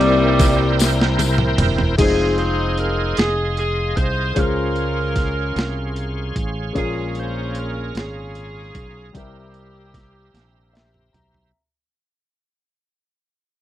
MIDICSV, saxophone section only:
0, 0, Header, 1, 2, 480
1, 0, Start_track
1, 0, Key_signature, -4, "minor"
1, 0, Tempo, 795756
1, 1197, Time_signature, 6, 3, 24, 8
1, 8210, End_track
2, 0, Start_track
2, 0, Title_t, "Saxophone section"
2, 0, Program_c, 0, 65
2, 0, Note_on_c, 0, 46, 67
2, 0, Note_on_c, 0, 52, 72
2, 0, Note_on_c, 0, 55, 103
2, 698, Note_off_c, 0, 46, 0
2, 699, Note_off_c, 0, 52, 0
2, 722, Note_off_c, 0, 55, 0
2, 1202, Note_on_c, 0, 68, 83
2, 1204, Note_on_c, 0, 60, 64
2, 1204, Note_on_c, 0, 63, 65
2, 1422, Note_off_c, 0, 68, 0
2, 1442, Note_on_c, 0, 72, 85
2, 1662, Note_off_c, 0, 72, 0
2, 1683, Note_on_c, 0, 70, 76
2, 1893, Note_off_c, 0, 60, 0
2, 1893, Note_off_c, 0, 63, 0
2, 1902, Note_off_c, 0, 70, 0
2, 1919, Note_on_c, 0, 68, 79
2, 2153, Note_off_c, 0, 68, 0
2, 2161, Note_on_c, 0, 68, 80
2, 2380, Note_off_c, 0, 68, 0
2, 2394, Note_on_c, 0, 72, 82
2, 2633, Note_off_c, 0, 72, 0
2, 2645, Note_on_c, 0, 70, 87
2, 2648, Note_on_c, 0, 65, 62
2, 3815, Note_off_c, 0, 65, 0
2, 3838, Note_off_c, 0, 70, 0
2, 4078, Note_on_c, 0, 61, 62
2, 4078, Note_on_c, 0, 65, 63
2, 4083, Note_on_c, 0, 68, 84
2, 4301, Note_off_c, 0, 68, 0
2, 4329, Note_on_c, 0, 72, 87
2, 4561, Note_off_c, 0, 72, 0
2, 4573, Note_on_c, 0, 70, 76
2, 4772, Note_off_c, 0, 61, 0
2, 4772, Note_off_c, 0, 65, 0
2, 4803, Note_off_c, 0, 70, 0
2, 4815, Note_on_c, 0, 68, 85
2, 4816, Note_on_c, 0, 61, 59
2, 4816, Note_on_c, 0, 65, 60
2, 5501, Note_off_c, 0, 68, 0
2, 5502, Note_off_c, 0, 61, 0
2, 5502, Note_off_c, 0, 65, 0
2, 5536, Note_on_c, 0, 67, 77
2, 5540, Note_on_c, 0, 58, 55
2, 5540, Note_on_c, 0, 64, 55
2, 6706, Note_off_c, 0, 67, 0
2, 6708, Note_off_c, 0, 58, 0
2, 6708, Note_off_c, 0, 64, 0
2, 8210, End_track
0, 0, End_of_file